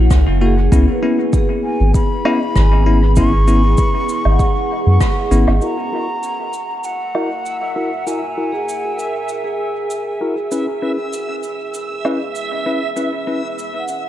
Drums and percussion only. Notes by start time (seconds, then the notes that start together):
0.11 kick, cross-stick, cabasa
0.72 kick, cabasa
1.33 kick, cabasa
1.94 kick, cabasa
2.25 low woodblock
2.56 kick, cross-stick, cabasa
3.16 kick, cabasa
3.48 cabasa
3.78 kick, cabasa
4.09 cabasa
4.25 low woodblock
4.39 kick, cabasa
5.01 kick, cross-stick, cabasa
5.32 cabasa
5.48 low woodblock
5.62 cabasa
6.23 cabasa
6.53 cabasa
6.84 cabasa
7.15 low woodblock
7.46 cabasa
8.07 cabasa
8.69 cabasa
8.99 cabasa
9.29 cabasa
9.90 cabasa
10.52 cabasa
11.13 cabasa
11.43 cabasa
11.74 cabasa
12.05 low woodblock
12.35 cabasa
12.97 cabasa
13.59 cabasa
13.88 cabasa